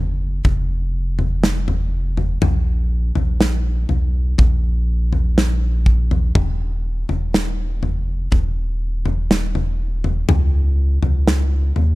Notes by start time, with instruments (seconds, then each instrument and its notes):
Already playing: sub bass F#1
0.45 sub bass F1, kick, floor tom
1.19 floor tom
1.44 snare
1.68 floor tom
2.17 floor tom
2.42 sub bass A#1, floor tom
3.15 sub bass A#1, floor tom
3.41 snare
3.89 sub bass B1, floor tom
4.38 sub bass A#1, kick, floor tom
5.12 floor tom
5.38 snare
5.86 kick
6.11 floor tom
6.35 sub bass D#1, kick, floor tom
7.09 sub bass D#1, floor tom
7.34 snare
7.82 sub bass F1, floor tom
8.32 sub bass D#1, kick, floor tom
9.05 floor tom
9.31 snare
9.55 floor tom
10.04 floor tom
10.29 sub bass C#2, floor tom
11.02 sub bass C#2, floor tom
11.28 snare
11.76 sub bass D#2, floor tom